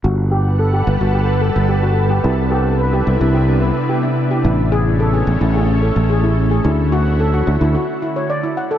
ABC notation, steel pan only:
X:1
M:4/4
L:1/16
Q:1/4=109
K:G
V:1 name="Steel pan"
F z G z A G z F G z A z G F z G | E z G z B G z E G z B z G E z G | E z ^G z A G z E G z A z G E z G | E z F z A F z E F z E ^c d E f A |]